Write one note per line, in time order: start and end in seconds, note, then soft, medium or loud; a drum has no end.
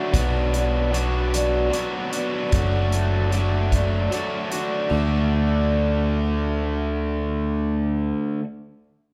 0.00 0.12 F#3 medium
0.00 0.15 A3 soft
0.00 0.15 D4 medium
0.00 0.14 F#4 medium
0.14 1.69 B1 medium
0.14 0.54 B2 medium
0.14 0.54 F#3 medium
0.14 0.54 B3 medium
0.14 0.54 D4 medium
0.14 0.53 F#4 medium
0.14 kick medium
0.14 closed hi-hat medium
0.54 0.94 B3 soft
0.54 0.94 D4 soft
0.54 0.94 F#4 medium
0.54 closed hi-hat soft
0.93 1.33 F#3 medium
0.93 1.34 B3 medium
0.93 1.33 D4 medium
0.93 1.33 F#4 medium
0.93 closed hi-hat medium
1.34 1.74 B2 medium
1.34 1.72 F#3 medium
1.34 1.74 B3 medium
1.34 1.74 D4 medium
1.34 1.73 F#4 medium
1.34 closed hi-hat medium
1.73 2.13 F#3 medium
1.73 2.14 B3 medium
1.73 2.14 D4 medium
1.73 2.13 F#4 medium
1.73 closed hi-hat medium
2.13 2.54 B3 soft
2.13 2.54 D4 soft
2.13 2.53 F#4 medium
2.13 closed hi-hat medium
2.52 4.08 F#1 medium
2.52 2.93 F#3 medium
2.52 2.93 A3 medium
2.52 2.93 D4 medium
2.52 2.93 F#4 medium
2.52 kick medium
2.52 closed hi-hat medium
2.92 3.34 A3 soft
2.92 3.34 D4 soft
2.92 3.33 F#4 medium
2.92 closed hi-hat soft
3.32 3.73 F#3 medium
3.32 3.73 A3 medium
3.32 3.73 D4 medium
3.32 closed hi-hat soft
3.36 3.73 F#4 medium
3.72 4.13 F#3 medium
3.72 4.13 A3 medium
3.72 4.13 D4 medium
3.72 4.13 F#4 medium
3.72 kick medium
3.72 closed hi-hat medium
4.12 4.53 F#3 medium
4.12 4.53 A3 medium
4.12 4.53 D4 medium
4.12 closed hi-hat soft
4.17 4.52 F#4 medium
4.52 4.91 A3 soft
4.52 4.93 D4 soft
4.52 4.92 F#4 soft
4.52 closed hi-hat medium
4.90 8.12 D2 medium
4.90 8.40 D3 medium
4.90 8.43 A3 medium
4.95 8.45 D4 medium
4.95 8.47 F#4 medium